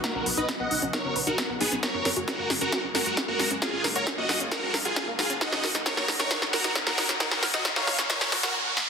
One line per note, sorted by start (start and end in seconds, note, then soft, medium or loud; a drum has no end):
0.00 1.79 C#3 medium
0.00 1.79 F#3 medium
0.00 1.79 B3 medium
0.00 1.79 D#4 medium
0.00 0.10 D#4 medium
0.00 3.58 F#4 medium
0.00 0.25 F#4 medium
0.00 0.25 A#4 loud
0.00 kick loud
0.00 snare medium
0.00 closed hi-hat medium
0.15 0.23 B1 medium
0.15 0.17 C#4 medium
0.26 0.34 B1 loud
0.26 0.30 B4 loud
0.26 open hi-hat loud
0.37 0.45 B1 medium
0.37 0.40 D#4 loud
0.37 0.51 B4 medium
0.37 0.51 D#5 medium
0.37 closed hi-hat medium
0.49 0.53 C#4 medium
0.49 kick loud
0.49 snare medium
0.49 closed hi-hat medium
0.60 0.67 B1 medium
0.60 0.64 B3 loud
0.60 0.81 D#5 medium
0.60 0.81 F#5 loud
0.71 0.79 B1 loud
0.71 0.75 D#4 medium
0.71 open hi-hat loud
0.82 0.90 B1 medium
0.82 0.85 C#4 medium
0.82 closed hi-hat medium
0.93 0.99 D#4 medium
0.93 1.14 A#4 medium
0.93 1.14 C#5 loud
0.93 kick loud
0.93 snare medium
0.93 closed hi-hat medium
1.05 1.12 F#1 medium
1.05 1.07 C#4 medium
1.16 1.23 B1 loud
1.16 1.20 B4 loud
1.16 open hi-hat loud
1.27 1.35 B1 medium
1.27 1.29 D#4 loud
1.27 1.48 F#4 medium
1.27 1.48 A#4 medium
1.27 closed hi-hat medium
1.38 1.42 C#4 medium
1.38 kick loud
1.38 snare medium
1.38 closed hi-hat medium
1.49 1.57 B1 medium
1.49 1.53 B3 loud
1.61 1.68 B1 loud
1.61 1.75 B3 medium
1.61 1.65 D#4 medium
1.61 1.75 G#4 medium
1.61 open hi-hat medium
1.72 1.79 B1 medium
1.72 1.74 C#4 medium
1.72 closed hi-hat medium
1.83 8.89 C#3 medium
1.83 8.89 F#3 medium
1.83 5.38 G#3 medium
1.83 8.89 A#3 medium
1.83 1.89 F#4 medium
1.83 2.11 A#4 medium
1.83 2.11 C#5 loud
1.83 kick loud
1.83 snare medium
1.83 closed hi-hat medium
1.83 riser medium
1.94 2.02 F#2 medium
1.94 1.97 C#4 medium
2.05 2.13 F#2 medium
2.05 2.09 A#4 loud
2.05 snare medium
2.05 open hi-hat loud
2.17 2.24 F#2 loud
2.17 2.19 F#4 loud
2.17 closed hi-hat medium
2.28 2.32 C#4 medium
2.28 2.49 F#4 medium
2.28 2.49 A#4 loud
2.28 kick loud
2.28 snare medium
2.28 closed hi-hat medium
2.39 2.46 F#2 medium
2.39 2.43 A#3 loud
2.50 2.58 F#2 loud
2.50 2.54 F#4 medium
2.50 snare medium
2.50 open hi-hat medium
2.61 2.69 F#2 medium
2.61 2.64 C#4 medium
2.61 2.82 F#4 medium
2.61 2.82 A#4 loud
2.61 closed hi-hat medium
2.72 2.79 F#4 medium
2.72 kick loud
2.72 snare medium
2.72 closed hi-hat medium
2.84 2.91 C#2 medium
2.84 2.86 C#4 medium
2.95 3.02 F#2 loud
2.95 3.16 F#4 medium
2.95 3.16 A#4 loud
2.95 2.99 A#4 loud
2.95 snare medium
2.95 open hi-hat loud
3.06 3.14 F#2 medium
3.06 3.09 F#4 loud
3.06 closed hi-hat medium
3.17 3.21 C#4 medium
3.17 kick loud
3.17 snare medium
3.17 closed hi-hat medium
3.28 3.36 F#2 medium
3.28 3.32 A#3 loud
3.28 3.49 F#4 medium
3.28 3.49 A#4 medium
3.40 3.47 F#2 loud
3.40 3.44 F#4 medium
3.40 snare medium
3.40 open hi-hat medium
3.51 3.58 F#2 loud
3.51 3.53 C#4 medium
3.51 closed hi-hat medium
3.62 3.83 F4 medium
3.62 5.39 F4 medium
3.62 3.68 F#4 medium
3.62 3.83 G#4 medium
3.62 kick loud
3.62 snare medium
3.62 closed hi-hat medium
3.73 3.81 F#2 medium
3.73 3.76 C#4 medium
3.84 3.92 F#2 loud
3.84 3.88 A#4 loud
3.84 snare medium
3.84 open hi-hat loud
3.96 4.03 F#2 loud
3.96 3.98 F#4 loud
3.96 4.10 A#4 medium
3.96 4.10 C#5 medium
3.96 closed hi-hat medium
4.07 4.11 C#4 medium
4.07 kick loud
4.07 snare medium
4.07 closed hi-hat medium
4.18 4.26 F#2 medium
4.18 4.22 A#3 loud
4.18 4.39 F#4 medium
4.18 4.39 D#5 loud
4.29 4.37 F#2 loud
4.29 4.33 F#4 medium
4.29 snare medium
4.29 open hi-hat medium
4.40 4.48 F#2 medium
4.40 4.43 C#4 medium
4.40 closed hi-hat medium
4.52 4.58 F#4 medium
4.52 4.73 F#4 medium
4.52 4.73 A#4 loud
4.52 kick loud
4.52 snare medium
4.52 closed hi-hat medium
4.63 4.70 C#2 medium
4.63 4.65 C#4 medium
4.74 4.81 F#2 medium
4.74 4.78 A#4 loud
4.74 snare medium
4.74 open hi-hat loud
4.85 4.93 F#2 medium
4.85 5.06 F4 medium
4.85 4.88 F#4 loud
4.85 5.06 G#4 loud
4.85 closed hi-hat medium
4.96 5.00 C#4 medium
4.96 kick loud
4.96 snare medium
4.96 closed hi-hat medium
5.08 5.15 F#2 medium
5.08 5.12 A#3 loud
5.19 5.26 F#2 loud
5.19 5.33 F4 medium
5.19 5.23 F#4 medium
5.19 5.33 G#4 medium
5.19 snare medium
5.19 open hi-hat medium
5.30 5.37 F#2 medium
5.30 5.32 C#4 medium
5.30 closed hi-hat medium
5.41 5.47 D#4 medium
5.41 7.19 D#4 medium
5.41 8.89 F#4 medium
5.41 5.69 F#4 medium
5.41 5.69 D#5 loud
5.41 kick loud
5.41 snare medium
5.41 closed hi-hat medium
5.52 5.60 D#2 medium
5.52 5.55 C#4 medium
5.52 snare medium
5.64 5.71 D#2 loud
5.64 5.68 A#4 loud
5.64 snare medium
5.64 open hi-hat loud
5.75 5.82 D#2 loud
5.75 5.77 D#4 loud
5.75 snare medium
5.75 closed hi-hat medium
5.86 5.90 C#4 medium
5.86 6.07 A#4 medium
5.86 6.07 C#5 loud
5.86 kick loud
5.86 snare loud
5.86 closed hi-hat medium
5.97 6.05 D#2 medium
5.97 6.01 A#3 loud
5.97 snare medium
6.08 6.16 D#2 loud
6.08 6.12 D#4 medium
6.08 snare medium
6.08 open hi-hat medium
6.19 6.27 D#2 medium
6.19 6.22 C#4 medium
6.19 6.40 A#4 medium
6.19 6.40 C#5 loud
6.19 snare medium
6.19 closed hi-hat medium
6.31 6.37 D#4 medium
6.31 kick loud
6.31 snare medium
6.31 closed hi-hat medium
6.42 6.49 C#2 medium
6.42 6.44 C#4 medium
6.42 snare medium
6.53 6.61 D#2 loud
6.53 6.74 F#4 medium
6.53 6.57 A#4 loud
6.53 6.74 A#4 loud
6.53 snare loud
6.53 open hi-hat loud
6.64 6.72 D#2 medium
6.64 6.67 D#4 loud
6.64 snare medium
6.64 closed hi-hat medium
6.75 6.80 C#4 medium
6.75 kick loud
6.75 snare loud
6.75 closed hi-hat medium
6.87 6.94 D#2 medium
6.87 6.91 A#3 loud
6.87 7.08 F#4 medium
6.87 7.08 A#4 loud
6.87 snare medium
6.98 7.05 D#2 loud
6.98 7.02 D#4 medium
6.98 snare loud
6.98 open hi-hat medium
7.09 7.17 D#2 medium
7.09 7.12 C#4 medium
7.09 snare medium
7.09 closed hi-hat medium
7.20 8.89 C#4 medium
7.20 7.26 D#4 medium
7.20 7.41 F#4 medium
7.20 7.41 A#4 loud
7.20 kick loud
7.20 snare loud
7.20 closed hi-hat medium
7.31 7.39 D#2 medium
7.31 7.34 C#4 medium
7.31 snare medium
7.43 7.50 D#2 loud
7.43 7.47 A#4 loud
7.43 snare loud
7.43 open hi-hat loud
7.54 7.61 D#2 medium
7.54 7.56 D#4 loud
7.54 7.68 F#4 medium
7.54 7.68 D#5 medium
7.54 snare medium
7.54 closed hi-hat medium
7.65 7.69 C#4 medium
7.65 kick loud
7.65 snare loud
7.65 closed hi-hat medium
7.76 7.84 D#2 medium
7.76 7.80 A#3 loud
7.76 7.97 C#5 medium
7.76 7.97 F5 loud
7.76 snare medium
7.87 7.95 D#2 loud
7.87 7.91 D#4 medium
7.87 snare loud
7.87 open hi-hat medium
7.99 8.06 D#2 medium
7.99 8.01 C#4 medium
7.99 snare medium
7.99 closed hi-hat medium
8.10 8.16 D#4 medium
8.10 8.31 A#4 medium
8.10 8.31 C#5 loud
8.10 kick loud
8.10 snare loud
8.10 closed hi-hat medium
8.21 8.28 C#2 medium
8.21 8.23 C#4 medium
8.21 snare loud
8.32 8.40 D#2 loud
8.32 8.38 F#4 loud
8.32 snare loud
8.32 open hi-hat loud
8.43 8.51 D#2 loud
8.43 8.55 F#4 medium
8.43 8.49 F#4 medium
8.43 8.55 A#4 medium
8.43 snare medium
8.43 closed hi-hat medium
8.77 snare loud